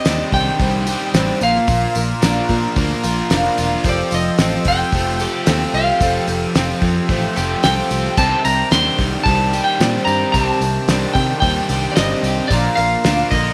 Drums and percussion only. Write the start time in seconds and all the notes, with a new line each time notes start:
0.05 snare, open hi-hat, tambourine
0.32 kick, open hi-hat, tambourine
0.60 kick, open hi-hat, tambourine
0.87 open hi-hat, tambourine
1.14 snare, open hi-hat, tambourine
1.41 open hi-hat, tambourine
1.55 snare
1.67 kick, open hi-hat, tambourine
1.95 open hi-hat, tambourine
2.22 snare, open hi-hat, tambourine
2.49 kick, open hi-hat, tambourine
2.76 kick, open hi-hat, tambourine
3.03 open hi-hat, tambourine
3.30 snare, open hi-hat, tambourine
3.57 open hi-hat, tambourine
3.84 kick, open hi-hat, tambourine
4.11 open hi-hat, tambourine
4.38 snare, open hi-hat, tambourine
4.65 kick, open hi-hat, tambourine
4.92 kick, open hi-hat, tambourine
5.20 open hi-hat, tambourine
5.46 snare, open hi-hat, tambourine
5.74 open hi-hat
6.00 kick, open hi-hat, tambourine
6.28 open hi-hat, tambourine
6.55 snare, open hi-hat, tambourine
6.82 kick, open hi-hat, tambourine
7.09 kick, open hi-hat, tambourine
7.36 open hi-hat, tambourine
7.63 snare, open hi-hat, tambourine
7.90 open hi-hat, tambourine
8.05 snare
8.17 kick, tambourine, crash
8.45 open hi-hat, tambourine
8.71 snare, open hi-hat, tambourine
8.99 kick, open hi-hat, tambourine
9.26 kick, open hi-hat, tambourine
9.53 open hi-hat, tambourine
9.80 snare, open hi-hat, tambourine
10.07 open hi-hat, tambourine
10.34 kick, open hi-hat, tambourine
10.61 open hi-hat, tambourine
10.88 snare, open hi-hat, tambourine
11.15 kick, open hi-hat, tambourine
11.42 kick, open hi-hat, tambourine
11.69 open hi-hat, tambourine
11.96 snare, open hi-hat, tambourine
12.24 open hi-hat, tambourine
12.51 kick, open hi-hat, tambourine
12.77 open hi-hat
13.04 snare, open hi-hat, tambourine
13.31 kick, open hi-hat, tambourine